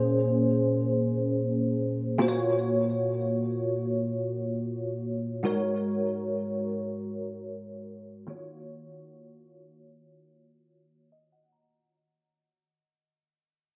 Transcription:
0.00 2.15 A#2 medium
0.00 2.16 A#3 medium
0.00 2.16 C#4 medium
0.00 2.17 G#4 medium
0.00 2.17 C5 medium
2.18 5.40 A#2 medium
2.18 5.40 A#3 medium
2.18 5.40 F4 medium
2.18 5.41 F#4 medium
2.18 2.27 C5 medium
2.28 5.45 C#5 medium
5.43 8.23 G#2 medium
5.43 8.24 G#3 medium
5.43 8.24 F#4 medium
5.43 8.25 A#4 medium
5.43 8.25 C#5 medium
8.27 11.48 D#3 medium
8.27 11.48 A#3 medium
8.27 11.49 F4 medium
8.27 11.49 F#4 medium
8.27 11.49 C#5 medium
11.12 11.31 D#5 medium
11.32 11.51 F#5 medium
11.52 11.90 A#5 medium

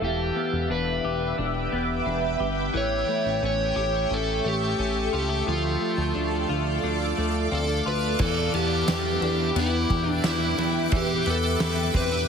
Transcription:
0.01 0.31 E1 loud
0.01 2.73 E3 medium
0.01 0.71 G4 medium
0.01 2.72 B4 medium
0.01 2.72 E5 medium
0.01 5.43 G5 medium
0.01 2.72 D6 medium
0.36 1.71 B3 soft
0.53 0.68 E1 loud
0.70 1.00 E1 loud
0.70 1.37 D4 medium
0.70 1.35 B4 medium
1.04 1.34 E1 medium
1.04 2.40 G4 medium
1.38 1.68 E1 loud
1.38 2.05 D4 medium
1.72 2.02 E1 medium
1.72 2.81 B3 medium
2.06 2.36 E1 loud
2.06 2.81 D4 soft
2.40 2.70 G1 medium
2.40 3.11 G4 medium
2.74 3.04 A1 loud
2.74 5.46 E3 medium
2.74 8.16 A4 medium
2.74 3.45 C#5 medium
2.74 5.45 E5 medium
2.74 5.45 C#6 medium
3.08 4.44 A3 medium
3.26 3.40 A1 medium
3.42 3.73 A1 medium
3.42 4.08 C#4 medium
3.46 4.14 C#5 medium
3.76 4.06 A1 medium
3.76 5.12 G4 medium
4.10 4.41 A1 medium
4.10 4.78 C#4 medium
4.14 4.47 A4 medium
4.44 4.75 A1 medium
4.44 5.80 A3 medium
4.44 5.14 G4 medium
4.79 5.09 A1 medium
4.79 5.54 C#4 soft
5.13 5.43 C#2 medium
5.13 5.29 F4 medium
5.13 5.48 G4 medium
5.29 5.54 G4 soft
5.46 5.77 D2 loud
5.46 8.19 F3 medium
5.46 7.48 F4 medium
5.46 8.17 D5 medium
5.46 8.17 F5 medium
5.46 8.17 D6 medium
5.80 7.16 A3 soft
5.98 6.13 D2 medium
6.15 6.45 D2 loud
6.15 6.83 D4 soft
6.49 6.79 D2 medium
6.49 7.85 F4 medium
6.83 7.13 D2 loud
6.83 7.51 D4 medium
7.17 7.48 D2 medium
7.17 8.26 A3 medium
7.51 7.82 D2 loud
7.51 7.68 C4 soft
7.51 7.87 A4 medium
7.68 8.26 D4 soft
7.86 8.16 D2 medium
7.86 8.27 F4 medium
7.86 8.22 B4 medium
8.19 8.49 E2 loud
8.19 10.91 E3 medium
8.19 8.55 A4 loud
8.19 12.28 B4 medium
8.19 12.28 E5 medium
8.19 12.28 G5 medium
8.19 12.28 D6 medium
8.19 kick loud
8.19 crash loud
8.54 8.84 E2 medium
8.54 9.55 B3 medium
8.54 9.60 G4 loud
8.54 ride soft
8.88 9.18 E2 loud
8.88 9.89 G4 medium
8.88 snare loud
8.88 ride medium
8.88 tambourine medium
9.21 9.52 E2 loud
9.21 10.23 D4 medium
9.21 ride soft
9.55 9.86 E2 loud
9.55 10.57 B3 medium
9.55 10.10 E4 loud
9.55 ride medium
9.90 10.20 E2 loud
9.90 11.60 G4 medium
9.90 kick medium
9.90 ride soft
10.10 10.25 D4 loud
10.24 10.54 E2 loud
10.24 11.94 D4 medium
10.24 10.96 E4 medium
10.24 snare loud
10.24 ride medium
10.24 tambourine medium
10.58 10.88 E2 loud
10.58 11.26 B3 medium
10.58 ride medium
10.92 11.22 E2 loud
10.92 12.28 E3 medium
10.92 kick loud
10.92 ride medium
10.96 11.29 G4 loud
11.26 11.56 E2 medium
11.26 12.27 B3 medium
11.26 ride soft
11.30 11.96 A4 loud
11.60 11.90 E2 loud
11.60 12.28 G4 medium
11.60 snare loud
11.60 ride medium
11.60 tambourine medium
11.94 12.25 E2 loud
11.94 12.12 C4 medium
11.94 12.28 B4 loud
11.94 kick loud
11.94 ride soft
12.12 12.28 D4 medium

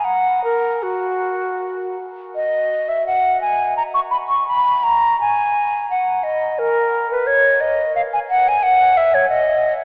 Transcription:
0.04 0.44 F#5 medium
0.44 0.84 A#4 medium
0.83 1.97 F#4 medium
2.35 2.90 D#5 medium
2.89 3.06 E5 medium
3.07 3.41 F#5 medium
3.41 3.76 G#5 medium
3.77 3.83 A#5 medium
3.94 4.00 C#6 medium
4.11 4.17 B5 medium
4.28 4.47 C#6 medium
4.48 4.85 B5 medium
4.83 5.19 A#5 medium
5.21 5.89 G#5 loud
5.90 6.25 F#5 medium
6.23 6.60 D#5 medium
6.59 7.11 A#4 medium
7.12 7.28 B4 medium
7.27 7.62 C#5 medium
7.61 7.95 D#5 medium
7.96 8.02 F5 medium
8.13 8.19 G#5 medium
8.30 8.50 F#5 medium
8.48 8.65 G#5 medium
8.63 8.99 F#5 loud
8.97 9.16 E5 loud
9.14 9.29 C#5 medium
9.29 9.73 D#5 loud

